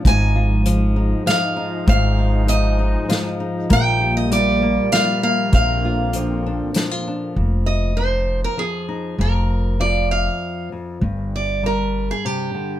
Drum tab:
HH |x-x-x-|x-x-x-|x-x-x-|x-x-x-|
SD |----o-|----o-|----o-|----o-|
BD |o-----|o-----|o-----|o-----|

HH |------|------|------|
SD |------|------|------|
BD |------|------|------|